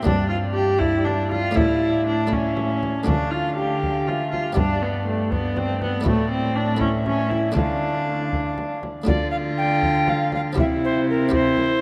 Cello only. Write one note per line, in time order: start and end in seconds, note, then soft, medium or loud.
0.06 1.53 G2 medium
1.56 2.84 A2 medium
3.06 4.53 D3 medium
4.57 6.03 G2 medium
6.06 7.57 A2 medium
7.56 8.87 D3 medium
9.06 10.59 D3 medium
10.58 11.81 C3 medium